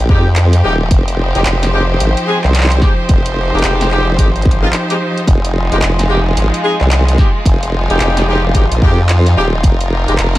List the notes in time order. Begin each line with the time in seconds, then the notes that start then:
Already playing: F3 G#3 D#4 G4
0.09 F2 G#3 C4 D#4 G4, kick
0.36 clap, closed hi-hat
0.53 closed hi-hat
0.64 D#1 G#3 C4 D#4 G4
0.91 F1 C5, kick, closed hi-hat
1.08 closed hi-hat
1.35 F1 G#3 C4 D#4 G4, closed hi-hat
1.46 F1, clap, closed hi-hat
1.63 snare, closed hi-hat
1.73 G#3 C4 D#4 G4
2.00 G#1, closed hi-hat
2.17 closed hi-hat
2.27 G#3 C4 D#4 G#4
2.44 C2, clap
2.55 clap, closed hi-hat
2.57 clap
2.60 clap
2.63 clap
2.69 clap, closed hi-hat
2.82 G#3 C4 D#4 G4, kick, snare
3.09 F1, kick, closed hi-hat
3.26 closed hi-hat
3.53 F1 G#3 C4 D#4 G4
3.58 closed hi-hat
3.64 F1, clap, closed hi-hat
3.81 snare, closed hi-hat
3.91 G#3 C4 D#4 G4, clap
4.18 G#1 G#3 C4 D#4 G4, kick, closed hi-hat
4.36 closed hi-hat
4.42 kick, closed hi-hat
4.51 closed hi-hat
4.62 G#3 C4 D#4 F4
4.73 clap, closed hi-hat
4.89 G#3 C4 D#4 G4, closed hi-hat
5.17 closed hi-hat
5.27 F1 G#3 F4, kick, closed hi-hat
5.45 closed hi-hat
5.72 F1 G#3 C4 D#4 G4, closed hi-hat
5.82 F1, clap, closed hi-hat
5.99 snare, closed hi-hat
6.09 G#3 C4 D#4 G4
6.37 G#1, closed hi-hat
6.54 closed hi-hat
6.64 G#3 C4 D#4 G#4
6.81 C2, clap
6.91 clap, closed hi-hat
7.08 closed hi-hat
7.18 G#3 C4 D#4 G4, kick, snare
7.45 F1, kick, closed hi-hat
7.63 closed hi-hat
7.90 F1 G#3 C4 D#4 G4, closed hi-hat
8.00 F1, clap, closed hi-hat
8.17 snare, closed hi-hat
8.28 G#3 C4 D#4 G4
8.55 G#1 G#3 C4 D#4 G4, kick, closed hi-hat
8.71 A#1, closed hi-hat
8.82 F2 G#3 C4 D#4 G4, kick
9.09 clap, closed hi-hat
9.26 closed hi-hat
9.36 D#1 G#3 C4 D#4 G4
9.63 F1 A#4, kick, closed hi-hat
9.81 closed hi-hat
10.08 F1 G#3 C4 D#4 G4, closed hi-hat
10.18 F1, clap, closed hi-hat
10.35 snare, closed hi-hat